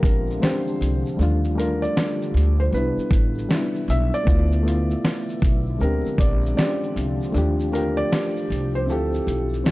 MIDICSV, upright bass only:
0, 0, Header, 1, 3, 480
1, 0, Start_track
1, 0, Tempo, 769231
1, 743, Time_signature, 4, 2, 24, 8
1, 6060, End_track
2, 0, Start_track
2, 0, Title_t, "Upright bass"
2, 0, Program_c, 0, 32
2, 18, Note_on_c, 0, 34, 90
2, 227, Note_off_c, 0, 34, 0
2, 504, Note_on_c, 0, 36, 78
2, 633, Note_off_c, 0, 36, 0
2, 742, Note_on_c, 0, 39, 91
2, 1156, Note_off_c, 0, 39, 0
2, 1462, Note_on_c, 0, 38, 95
2, 1669, Note_off_c, 0, 38, 0
2, 1700, Note_on_c, 0, 36, 91
2, 1831, Note_off_c, 0, 36, 0
2, 1940, Note_on_c, 0, 33, 90
2, 2148, Note_off_c, 0, 33, 0
2, 2421, Note_on_c, 0, 35, 91
2, 2552, Note_off_c, 0, 35, 0
2, 2664, Note_on_c, 0, 38, 105
2, 3077, Note_off_c, 0, 38, 0
2, 3384, Note_on_c, 0, 35, 93
2, 3590, Note_off_c, 0, 35, 0
2, 3623, Note_on_c, 0, 38, 89
2, 3753, Note_off_c, 0, 38, 0
2, 3857, Note_on_c, 0, 34, 87
2, 4067, Note_off_c, 0, 34, 0
2, 4344, Note_on_c, 0, 36, 84
2, 4473, Note_off_c, 0, 36, 0
2, 4583, Note_on_c, 0, 39, 99
2, 4997, Note_off_c, 0, 39, 0
2, 5305, Note_on_c, 0, 36, 84
2, 5545, Note_off_c, 0, 36, 0
2, 5545, Note_on_c, 0, 38, 96
2, 5751, Note_off_c, 0, 38, 0
2, 5784, Note_on_c, 0, 35, 82
2, 5991, Note_off_c, 0, 35, 0
2, 6025, Note_on_c, 0, 31, 91
2, 6060, Note_off_c, 0, 31, 0
2, 6060, End_track
3, 0, Start_track
3, 0, Title_t, "Muted upright bass strokes"
3, 1853, Note_on_c, 9, 29, 46
3, 1916, Note_off_c, 9, 29, 0
3, 3774, Note_on_c, 9, 29, 44
3, 3837, Note_off_c, 9, 29, 0
3, 6060, End_track
0, 0, End_of_file